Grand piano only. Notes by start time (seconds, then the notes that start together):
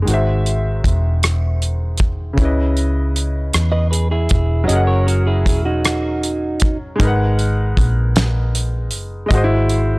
0.02 D#3 G#3
0.08 F#4 C5
0.14 E5
2.33 C#3 C#4
2.39 E4 B4
2.45 D#5
4.64 F#3 C#4
4.70 G#4 A#4
4.75 F#5
6.96 G#3 D#4
7.01 A#4 B4
7.07 F#5
9.26 G#3 D#5
9.32 F#4 C5
9.38 D#5
9.44 E4